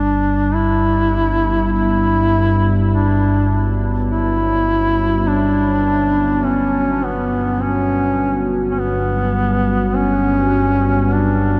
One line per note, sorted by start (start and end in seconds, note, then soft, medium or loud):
0.00 11.60 G1 medium
0.00 11.60 G2 medium
0.00 11.60 B3 medium
0.00 0.56 D4 loud
0.00 11.60 F#4 medium
0.00 11.60 A5 medium
0.55 1.71 E4 loud
1.72 2.85 E4 loud
2.13 10.27 C#5 medium
2.91 3.76 D4 loud
4.09 5.29 E4 loud
5.28 6.46 D4 loud
6.44 7.06 C#4 medium
7.04 7.64 B3 medium
7.62 8.49 C#4 loud
8.71 8.81 C#4 medium
8.79 9.97 B3 loud
9.91 11.60 B4 medium
9.96 11.15 C#4 loud
11.14 11.60 D4 loud